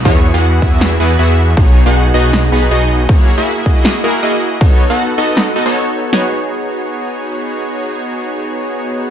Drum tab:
SD |----o---|----o---|----o---|----o---|
BD |o--o----|o-------|o--o----|o-------|

SD |o-------|--------|
BD |--------|--------|